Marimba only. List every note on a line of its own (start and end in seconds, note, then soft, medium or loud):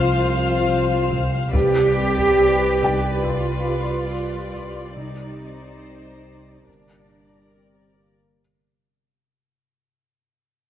0.24 0.50 C3 soft
0.67 0.93 C3 soft
1.11 1.36 C3 soft
1.53 1.79 C3 medium
1.97 2.22 C4 soft
2.39 2.65 C3 soft
2.82 3.08 C3 medium
3.25 3.51 C3 medium
4.11 4.36 C3 medium
4.54 4.79 C3 medium
4.96 5.22 C3 medium
5.40 5.65 C4 soft
6.68 6.94 G2 soft
7.11 7.37 G2 soft
7.97 8.22 G2 soft